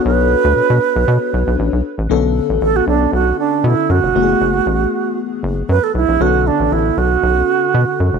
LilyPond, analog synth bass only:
\new Staff \with { instrumentName = "Analog synth bass" } { \clef bass \time 4/4 \key b \dorian \tempo 4 = 117 b,,8. d,16 b,16 b,16 r16 b,,16 b,16 r16 b,,16 b,,16 a,,16 b,,16 r16 a,,16 | b,,8. a,,16 a,,8 b,,8 b,,8 r8 b,16 r16 fis,16 eis,,16 | fis,,8 fis,,8 a,,8 r4 fis,,8 fis,16 r16 b,,16 ais,,16 | b,,8. a,,16 a,,8 b,,8 b,,8 r8 b,16 r16 fis,16 eis,,16 | }